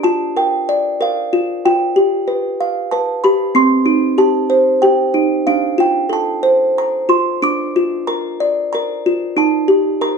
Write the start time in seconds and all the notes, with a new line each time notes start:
Already playing: D4
0.03 F4 A5
0.36 A#4 G5
0.69 D5
1.01 A#4 F5
1.33 F4
1.65 F4 G5
1.96 G4
2.28 B4
2.61 F5
2.91 B4 A5
3.24 G4 B5
3.55 C4 C6
3.86 D#4
4.18 G4 A5
4.50 C5
4.82 G4 G5
5.14 D#4
5.47 D4 F5
5.78 F4 G5
6.09 A4 A5
6.43 C5
6.78 A#5
7.09 F4 C6
7.42 D4 D6
7.76 F4
8.07 A#4 A#5
8.40 D5
8.73 A#4 A#5
9.06 F4
9.37 D#4 A5
9.68 G4
10.01 A#4 A#5